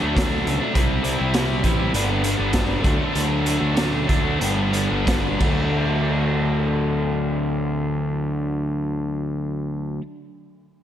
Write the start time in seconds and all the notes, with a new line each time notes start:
Already playing: D3
0.00 D2 F#3 A3 D4
0.15 D3 F#3 A3 D4, kick, snare, closed hi-hat
0.30 F#3 A3 D4
0.46 C#2, closed hi-hat
0.60 F#3 A3 D4
0.73 C2 C3 G3 C4 E4, kick, closed hi-hat
1.03 C3 G3 C4 E4, closed hi-hat
1.18 C2 G3 C4 E4
1.33 C3 G3 C4 E4, snare, closed hi-hat
1.63 A1 C3 G3 C4 E4, kick, closed hi-hat
1.78 G3 C4 E4
1.93 G1 G2 D3 G3 B3 D4, closed hi-hat
2.09 G3 B3 D4
2.23 D3 G3 B3 D4, closed hi-hat
2.37 G1 G3 B3 D4
2.53 G2 D3 G3 B3 D4, kick, snare, closed hi-hat
2.66 G3 B3 D4
2.81 D2 D3 F#3 A3 D4, kick, closed hi-hat
2.96 F#3 A3 D4
3.12 D2 D3 F#3 A3 D4, closed hi-hat
3.45 D3 F#3 A3 D4, closed hi-hat
3.58 D2 F#3 A3 D4
3.75 D3 F#3 A3 D4, snare, closed hi-hat
4.07 D2 D3 F#3 A3 D4, kick, closed hi-hat
4.23 F#3 A3 D4
4.40 G1 G2 D3 G3 B3 D4, closed hi-hat
4.54 G3 B3 D4
4.71 D3 G3 B3 D4, closed hi-hat
4.88 G1 G3 B3 D4
5.04 G2 D3 G3 B3 D4, kick, snare, closed hi-hat
5.21 G3 B3 D4
5.37 D2 D3 F#3 A3 D4, kick, crash